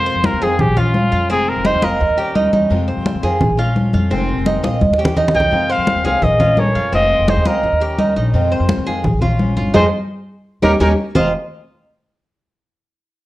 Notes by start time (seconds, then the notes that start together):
Already playing: F2 C3 D#3 G#3 C4 F4 C5
0.06 C5, high conga
0.15 F2
0.24 A#4, high conga
0.33 D#2
0.41 F2 D#3 G#3 C4 F4 G#4
0.59 A#1 G4, muted steel-string acoustic guitar stroke, high conga, low conga
0.68 A#1
0.76 G#3 C#4 F4, high conga, low conga
0.94 F3 G#3 C#4 F4, high conga
1.12 F2 F4
1.29 F1 C3 D#3 G#3 C4 F4 G#4, high conga
1.47 A#4, high conga
1.56 F1
1.65 D#4 C5, high conga
1.74 D#2
1.82 F1 D#3 G#3 C4 F4 A#4 D#5, high conga
2.00 D#2, muted steel-string acoustic guitar stroke, high conga
2.09 D#2
2.17 G3 C#4 G4, high conga
2.35 D#3 G3 C#4 D#4 G4, high conga
2.53 E2 D#4, high conga
2.70 F2 C3 D#3 G#3 C4 F4, high conga
2.88 C5, high conga
2.97 F2
3.06 high conga
3.14 D#2
3.23 F2 D#3 G#3 C4 F4 G#4
3.41 A#1, muted steel-string acoustic guitar stroke, high conga, low conga
3.50 A#1
3.57 G#3 C#4 F4, high conga
3.75 F3 G#3 C#4 F4, high conga
3.93 F2 F4, high conga
4.10 F1 C3 D#3 G#3 C4 F4, high conga
4.29 high conga
4.38 F1
4.46 D#4, high conga
4.55 D#2
4.63 A#1 D#3 G#3 C4 F4 D#5, high conga
4.81 D#2, muted steel-string acoustic guitar stroke, high conga
4.90 D#2, high conga
4.98 G3 C#4 G4
5.05 low conga
5.16 D#3 G3 C#4 D#4 G4, low conga
5.28 low conga
5.34 C2 D#4 D#5 G5
5.40 low conga
5.51 F2 C3 D#3 G#3 C4 F4, high conga
5.70 C5 F5, high conga
5.78 F2
5.87 high conga
5.96 D#2
6.04 C2 D#3 G#3 C4 F4 G#4 C#5 F5
6.22 A#1 A#4 D#5, muted steel-string acoustic guitar stroke, high conga, low conga
6.31 A#1
6.39 G#3 C#4 F4, high conga, low conga
6.56 F3 G#3 C#4 F4 A#4 C#5, high conga
6.75 F2 F4
6.92 F1 C3 D#3 G#3 C4 F4 C5 D#5, high conga
7.10 high conga
7.19 F1
7.28 D#4 G#4 C5, high conga
7.37 D#2
7.45 C#2 D#3 G#3 C4 F4 G4 A#4 D#5, high conga
7.63 D#2, muted steel-string acoustic guitar stroke, high conga
7.72 D#2
7.80 G3 C#4 G4, high conga
7.98 D#3 G3 C#4 D#4 G4, high conga
8.16 A#1 D#4
8.33 F2 C3 D#3 G#3 C4 F4, high conga
8.51 C5, high conga
8.60 F2
8.69 high conga
8.77 D#2
8.86 F2 D#3 G#3 C4 F4 G#4
9.03 A#1, muted steel-string acoustic guitar stroke, high conga, low conga
9.13 A#1
9.21 G#3 C#4 F4, high conga, low conga
9.39 F3 G#3 C#4 F4, high conga
9.57 G1 F4, high conga
9.74 F2 F3 G#3 C4 D#4 F4 G#4 C5, high conga
10.62 D#2 A#3 C#4 D#4 G4 A#4, high conga
10.80 D#2 A#3 C#4 D#4 G4 A#4, high conga
11.15 F1 F2 C3 D#3 G#3 C4 F4 C5 D#5, low conga